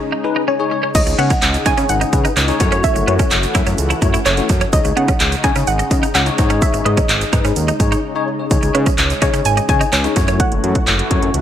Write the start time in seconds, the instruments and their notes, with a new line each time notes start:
Already playing: analog synth pad C#3 G#3 D#4
0.12 clean electric guitar D#4
0.24 tine electric piano D#4 G#4 B4, muted clean electric guitar stroke
0.36 clean electric guitar D#4
0.48 clean electric guitar C#4, synth pluck C#5, tine electric piano G#5
0.59 tine electric piano D#4 G#4 C#5
0.71 tine electric piano C#5, muted clean electric guitar stroke
0.83 clean electric guitar C#4, tine electric piano G#4 C#5
0.95 analog synth bass C#2, analog synth pad C#3 G#3 D#4, tine electric piano D#4 G#4 C#5, synth pluck D#5, kick, closed hi-hat, crash, shaker
1.07 analog synth bass C#2, muted clean electric guitar stroke, closed hi-hat, shaker
1.18 analog synth bass C#3, clean electric guitar B3, synth pluck F#5, closed hi-hat
1.30 clean electric guitar C#4, kick, closed hi-hat, shaker
1.42 analog synth bass C#2, muted clean electric guitar stroke, clap, closed hi-hat, shaker
1.54 closed hi-hat, shaker
1.65 analog synth bass C#3, tine electric piano D#4 G#4 C#5, clean electric guitar D#4, synth pluck G#5, kick, closed hi-hat, shaker
1.78 analog synth bass C#3, clean electric guitar C#4, closed hi-hat, shaker
1.89 analog synth bass G#1, synth pluck F#5, closed hi-hat, shaker
2.01 clean electric guitar D#4, closed hi-hat, shaker
2.13 analog synth bass C#3, tine electric piano D#4 G#4 B4, muted clean electric guitar stroke, kick, closed hi-hat, shaker
2.25 clean electric guitar D#4, closed hi-hat, shaker
2.37 analog synth bass C#2, clean electric guitar C#4, clap, closed hi-hat, shaker
2.48 tine electric piano D#4 G#4 C#5, closed hi-hat, shaker
2.60 analog synth bass F#2, analog synth pad E3 A3 F#4, tine electric piano A3 C#4 E4 F#4 C#5, muted clean electric guitar stroke, kick, closed hi-hat, shaker
2.72 clean electric guitar C#4, closed hi-hat, shaker
2.84 synth pluck E5, kick, closed hi-hat, shaker
2.96 analog synth bass F#1, muted clean electric guitar stroke, closed hi-hat, shaker
3.07 analog synth bass F#2, clean electric guitar B3, synth pluck C#5, closed hi-hat
3.19 clean electric guitar C#4, kick, closed hi-hat, shaker
3.31 analog synth bass F#1, muted clean electric guitar stroke, clap, closed hi-hat, shaker
3.43 closed hi-hat, shaker
3.54 analog synth bass F#2, tine electric piano A3 C#4 E4 F#4 E5, clean electric guitar E4, kick, closed hi-hat, shaker
3.67 analog synth bass F#2, clean electric guitar C#4, closed hi-hat, shaker
3.78 analog synth bass C#2, closed hi-hat, shaker
3.90 clean electric guitar E4, closed hi-hat, shaker
4.02 analog synth bass F#2, tine electric piano A3 C#4 E4 F#4 C#5, muted clean electric guitar stroke, kick, closed hi-hat, shaker
4.14 clean electric guitar E4, closed hi-hat, shaker
4.26 analog synth bass F#1, clean electric guitar C#4, synth pluck C#5, clap, closed hi-hat, shaker
4.37 tine electric piano A3 C#4 E4 F#4 C#5, closed hi-hat, shaker
4.49 analog synth bass F#2, muted clean electric guitar stroke, kick, closed hi-hat, shaker
4.61 clean electric guitar C#4, tine electric piano F#4 C#5, closed hi-hat, shaker
4.73 analog synth bass C#2, analog synth pad C#3 G#3 D#4, tine electric piano D#4 G#4 C#5, synth pluck D#5, kick, closed hi-hat, shaker
4.85 analog synth bass C#2, muted clean electric guitar stroke, closed hi-hat, shaker
4.96 analog synth bass C#3, clean electric guitar B3, synth pluck F#5, closed hi-hat
5.08 clean electric guitar C#4, kick, closed hi-hat, shaker
5.20 analog synth bass C#2, muted clean electric guitar stroke, clap, closed hi-hat, shaker
5.32 closed hi-hat, shaker
5.44 analog synth bass C#3, tine electric piano D#4 G#4 C#5, clean electric guitar D#4, synth pluck G#5, kick, closed hi-hat, shaker
5.56 analog synth bass C#3, clean electric guitar C#4, closed hi-hat, shaker
5.67 analog synth bass G#1, synth pluck F#5, closed hi-hat, shaker
5.79 clean electric guitar D#4, closed hi-hat, shaker
5.91 analog synth bass C#3, tine electric piano D#4 G#4 D#5, muted clean electric guitar stroke, kick, closed hi-hat, shaker
6.03 clean electric guitar D#4, closed hi-hat, shaker
6.15 analog synth bass C#2, clean electric guitar C#4, synth pluck F#5, clap, closed hi-hat, shaker
6.26 tine electric piano D#4 G#4 C#5, closed hi-hat, shaker
6.38 analog synth bass G#2, analog synth pad C#3, tine electric piano D#4 G#4 C#5, muted clean electric guitar stroke, kick, closed hi-hat, shaker
6.50 clean electric guitar C#4, closed hi-hat, shaker
6.62 synth pluck E5, kick, closed hi-hat, shaker
6.74 analog synth bass G#1, muted clean electric guitar stroke, closed hi-hat, shaker
6.85 analog synth bass G#2, clean electric guitar B3, synth pluck D#5, closed hi-hat
6.97 clean electric guitar C#4, kick, closed hi-hat, shaker
7.09 analog synth bass G#1, muted clean electric guitar stroke, clap, closed hi-hat, shaker
7.21 closed hi-hat, shaker
7.32 analog synth bass G#2, tine electric piano D#4 G#4 B4, clean electric guitar D#4, kick, closed hi-hat, shaker
7.45 analog synth bass G#2, clean electric guitar C#4, closed hi-hat, shaker
7.56 analog synth bass D#2, closed hi-hat, shaker
7.68 clean electric guitar D#4, closed hi-hat, shaker
7.80 analog synth bass G#2, tine electric piano D#4 G#4 C#5, muted clean electric guitar stroke, kick, closed hi-hat, shaker
7.92 clean electric guitar D#4, closed hi-hat, shaker
8.15 tine electric piano D#4 G#4 C#5
8.39 tine electric piano G#4 C#5
8.51 analog synth bass C#2, tine electric piano D#4 G#4 C#5, kick, closed hi-hat, shaker
8.63 analog synth bass C#2, muted clean electric guitar stroke, closed hi-hat, shaker
8.75 analog synth bass C#3, clean electric guitar B3, synth pluck C#5, closed hi-hat
8.86 clean electric guitar C#4, kick, closed hi-hat, shaker
8.98 analog synth bass C#2, muted clean electric guitar stroke, clap, closed hi-hat, shaker
9.10 closed hi-hat, shaker
9.22 analog synth bass C#3, tine electric piano D#4 G#4 C#5, clean electric guitar D#4, synth pluck C#5, kick, closed hi-hat, shaker
9.34 analog synth bass C#3, clean electric guitar C#4, closed hi-hat, shaker
9.45 analog synth bass G#1, synth pluck G#5, closed hi-hat, shaker
9.57 clean electric guitar D#4, closed hi-hat, shaker
9.69 analog synth bass C#3, tine electric piano D#4 G#4 C#5, synth pluck G#5, muted clean electric guitar stroke, kick, closed hi-hat, shaker
9.81 clean electric guitar D#4, closed hi-hat, shaker
9.93 analog synth bass C#2, clean electric guitar C#4, clap, closed hi-hat, shaker
10.04 tine electric piano D#4 G#4 C#5, closed hi-hat, shaker
10.16 analog synth bass F#2, analog synth pad E3 A3 F#4, tine electric piano A3 C#4 E4 F#4 C#5, muted clean electric guitar stroke, kick, closed hi-hat, shaker
10.28 clean electric guitar C#4, closed hi-hat, shaker
10.40 synth pluck F#5, kick, closed hi-hat
10.52 analog synth bass F#1, closed hi-hat
10.64 analog synth bass F#2, closed hi-hat
10.75 kick, closed hi-hat
10.87 analog synth bass F#1, clap, closed hi-hat
10.99 closed hi-hat
11.10 analog synth bass F#2, tine electric piano A3 C#4 E4 F#4 C#5, kick, closed hi-hat
11.22 analog synth bass F#2, closed hi-hat
11.34 analog synth bass C#2, closed hi-hat